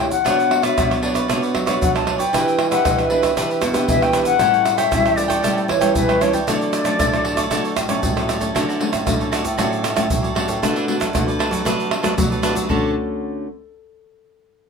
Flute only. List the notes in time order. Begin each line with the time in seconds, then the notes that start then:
Already playing: G5
0.11 F#5
0.63 E5
1.03 D5
1.82 F#5
1.95 A5
2.19 G5
2.70 F#5
3.11 E5
3.88 E5
4.02 G5
4.25 F#5
4.77 E5
5.16 D5
5.69 C#5
5.96 B4
6.21 C#5
6.33 D5